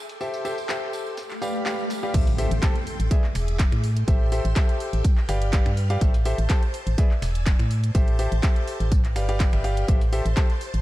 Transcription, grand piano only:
0.21 0.42 G4 medium
0.21 0.42 A4 medium
0.21 0.42 C5 medium
0.21 0.42 E5 medium
0.45 0.55 G4 medium
0.45 0.55 A4 medium
0.45 0.55 C5 medium
0.45 0.55 E5 medium
0.69 1.16 G4 medium
0.69 1.16 A4 medium
0.69 1.16 C5 medium
0.69 1.16 E5 medium
1.42 1.63 G4 medium
1.42 1.63 B4 medium
1.42 1.63 D5 medium
1.42 1.63 F5 loud
1.66 1.82 G4 medium
1.66 1.82 B4 medium
1.66 1.82 D5 medium
1.66 1.82 F5 loud
2.03 2.12 G4 medium
2.03 2.12 B4 medium
2.03 2.12 D5 medium
2.03 2.12 F5 loud
2.14 2.25 G4 medium
2.14 2.25 A4 medium
2.14 2.25 C5 medium
2.14 2.25 E5 medium
2.38 2.49 G4 loud
2.38 2.49 A4 medium
2.38 2.49 C5 medium
2.38 2.49 E5 loud
2.63 2.73 G4 medium
2.63 2.73 A4 medium
2.63 2.73 C5 medium
2.63 2.73 A5 loud
3.11 3.21 G#4 medium
3.11 3.21 B4 medium
3.11 3.21 D5 medium
3.11 3.21 E5 loud
4.08 4.29 G4 medium
4.08 4.29 A4 medium
4.08 4.29 C5 medium
4.08 4.29 E5 loud
4.32 4.42 G4 medium
4.32 4.42 A4 medium
4.32 4.42 C5 medium
4.32 4.42 E5 loud
4.56 5.03 G4 medium
4.56 5.03 A4 medium
4.56 5.03 C5 medium
4.56 5.03 E5 medium
5.29 5.50 G4 loud
5.29 5.50 B4 medium
5.29 5.50 D5 medium
5.29 5.50 F5 loud
5.53 5.69 G4 loud
5.53 5.69 B4 medium
5.53 5.69 D5 medium
5.53 5.69 F5 loud
5.90 5.99 G4 loud
5.90 5.99 B4 medium
5.90 5.99 D5 medium
5.90 5.99 F5 loud
6.01 6.12 G4 medium
6.01 6.12 A4 medium
6.01 6.12 C5 medium
6.01 6.12 E5 loud
6.26 6.36 G4 loud
6.26 6.36 A4 medium
6.26 6.36 C5 medium
6.26 6.36 E5 loud
6.50 6.60 G4 loud
6.50 6.60 A4 medium
6.50 6.60 C5 medium
6.50 6.60 A5 loud
6.98 7.08 G#4 medium
6.98 7.08 B4 medium
6.98 7.08 D5 medium
6.98 7.08 E5 loud
7.95 8.16 G4 medium
7.95 8.16 A4 medium
7.95 8.16 C5 medium
7.95 8.16 E5 medium
8.19 8.29 G4 medium
8.19 8.29 A4 medium
8.19 8.29 C5 medium
8.19 8.29 E5 loud
8.43 8.90 G4 medium
8.43 8.90 A4 medium
8.43 8.90 C5 medium
8.43 8.90 E5 medium
9.16 9.26 G4 medium
9.16 9.26 B4 medium
9.16 9.26 D5 medium
9.16 9.26 F5 medium
9.29 9.50 G4 medium
9.29 9.50 B4 medium
9.29 9.50 D5 medium
9.29 9.50 F5 loud
9.53 9.62 G4 medium
9.53 9.61 B4 medium
9.53 9.62 D5 medium
9.53 9.62 E5 medium
9.64 9.86 G4 loud
9.64 9.86 B4 medium
9.64 9.86 D5 medium
9.64 9.86 F5 loud
9.88 9.99 G4 medium
9.88 9.99 A4 medium
9.88 9.99 C5 medium
9.88 9.99 E5 medium
10.13 10.23 G4 loud
10.13 10.23 A4 medium
10.13 10.23 C5 medium
10.13 10.23 E5 loud
10.37 10.47 G4 medium
10.37 10.47 A4 medium
10.37 10.47 C5 medium
10.37 10.47 A5 loud

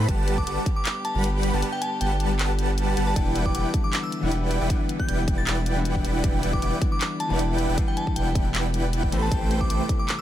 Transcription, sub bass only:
0.08 0.45 G1 loud
0.47 0.58 G1 loud
1.15 1.51 G1 loud
1.53 1.63 G1 loud
2.01 2.95 G1 loud
2.97 3.14 G1 medium
3.16 3.53 E1 loud
3.55 3.65 E1 loud
4.23 4.59 E1 loud
4.61 4.71 E1 loud
5.08 6.03 E1 loud
6.05 6.22 E1 medium
6.24 6.61 E1 loud
6.62 6.73 E1 loud
7.30 7.67 E1 loud
7.69 7.78 E1 medium
8.16 9.11 E1 loud
9.12 9.30 A1 loud
9.31 9.68 A1 medium
9.70 9.81 A1 loud

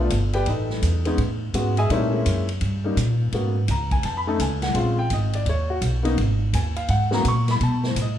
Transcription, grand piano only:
0.00 0.10 B3 medium
0.00 0.10 D4 medium
0.00 0.10 F4 medium
0.34 0.47 G4 medium
0.34 0.47 B4 medium
0.34 0.47 D5 medium
0.34 0.46 G5 medium
0.48 1.03 D#4 soft
0.48 1.03 A4 soft
0.48 1.03 B4 soft
0.48 1.02 D#5 medium
1.06 1.17 G#3 medium
1.06 1.17 B3 medium
1.06 1.18 C#4 medium
1.06 1.18 D#4 medium
1.54 1.75 G#3 medium
1.54 1.75 B3 medium
1.54 1.75 C#4 medium
1.54 1.75 F#4 medium
1.78 1.90 G#4 medium
1.78 1.90 D#5 medium
1.78 1.90 E5 medium
1.78 1.90 G#5 loud
1.89 2.10 G3 medium
1.89 2.11 A3 medium
1.89 2.11 C4 medium
1.89 2.11 D#4 medium
1.89 2.12 E4 medium
1.89 2.46 A#4 medium
1.89 2.46 C#5 medium
1.89 2.46 E5 medium
2.13 2.44 G#3 medium
2.13 2.44 A#3 medium
2.13 2.44 C#4 medium
2.13 2.44 E4 medium
2.84 2.96 G3 medium
2.84 2.96 A#3 medium
2.84 2.96 C#4 medium
2.84 2.96 D#4 medium
3.34 3.54 A#3 medium
3.34 3.54 B3 medium
3.34 3.54 C#4 medium
3.34 3.55 F#4 medium
3.71 3.92 A#5 medium
3.92 4.04 G#5 medium
4.05 4.17 A5 medium
4.17 4.28 B5 medium
4.27 4.39 A3 medium
4.27 4.39 C#4 medium
4.27 4.39 D#4 medium
4.27 4.39 A4 medium
4.27 4.40 A5 medium
4.42 4.63 G#5 medium
4.63 4.75 F#5 medium
4.74 4.96 G#3 medium
4.74 4.96 C4 medium
4.74 4.96 C#4 medium
4.74 4.96 F4 medium
4.74 4.99 F5 medium
4.99 5.11 G5 loud
5.13 5.35 D#5 medium
5.35 5.47 D5 medium
5.49 5.71 C#5 medium
5.70 5.78 F#4 medium
6.03 6.16 A#3 medium
6.03 6.16 B3 medium
6.03 6.17 C#4 medium
6.03 6.17 D#4 medium
6.55 6.77 G#5 medium
6.77 6.89 F5 medium
6.90 7.12 F#5 medium
7.11 7.23 A#3 medium
7.11 7.23 B3 medium
7.11 7.24 C#4 medium
7.11 7.24 F#4 medium
7.11 7.26 A#5 medium
7.28 7.49 C#6 medium
7.51 7.62 B5 medium
7.63 7.84 A5 medium
7.87 7.98 C5 medium
8.01 8.18 D#5 medium

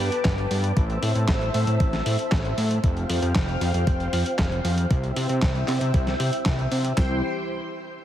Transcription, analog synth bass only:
0.25 0.46 G1 loud
0.51 0.72 G2 medium
0.77 0.98 A1 loud
1.03 1.13 A2 medium
1.16 1.26 A2 medium
1.28 1.50 A1 medium
1.54 1.65 A2 loud
1.67 1.78 A2 medium
1.80 2.01 A1 loud
2.06 2.17 A2 medium
2.32 2.53 A1 loud
2.58 2.79 A2 medium
2.84 3.05 F1 loud
3.10 3.20 F2 medium
3.22 3.33 F2 medium
3.35 3.57 F1 medium
3.61 3.72 F2 loud
3.74 3.85 F2 medium
3.87 4.08 F1 loud
4.13 4.24 F2 medium
4.39 4.60 F1 loud
4.65 4.86 F2 medium
4.91 5.12 C2 medium
5.16 5.27 C3 medium
5.29 5.40 C3 medium
5.42 5.64 C2 medium
5.68 5.79 C3 loud
5.81 5.92 C3 medium
5.94 6.15 C2 loud
6.20 6.30 C3 medium
6.46 6.67 C2 loud
6.72 6.93 C3 medium
6.97 7.22 C2 loud

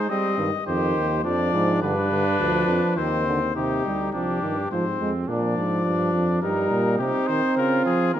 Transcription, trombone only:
0.09 0.38 G3 medium
0.38 0.51 D#3 medium
0.67 1.23 D#3 medium
1.24 1.80 F3 medium
1.81 1.94 D3 medium
2.11 2.24 D3 medium
2.40 3.00 F3 medium
2.99 3.27 D#3 medium
3.27 3.40 D3 medium
3.56 3.82 C3 medium
3.85 4.13 G3 medium
4.14 4.41 F3 medium
4.43 4.55 D#3 medium
4.72 4.84 F3 medium
5.00 5.13 G#3 medium
5.29 6.40 F3 medium
6.42 6.98 G3 medium
6.99 8.11 C4 medium
8.14 8.20 A#3 medium

